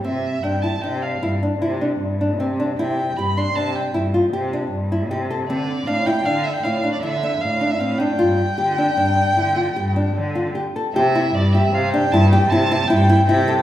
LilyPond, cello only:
\new Staff \with { instrumentName = "Cello" } { \clef bass \time 7/4 \key c \major \tempo 4 = 154 c4 g,4 c4 g,4 c4 g,4 c4 | c4 g,4 c4 g,4 c4 g,4 c4 | d4 a,4 d4 a,4 d4 a,4 a,4 | g,4 d4 g,4 d4 g,4 d4 r4 |
c4 g,4 c8 r8 g,4 c4 g,4 c4 | }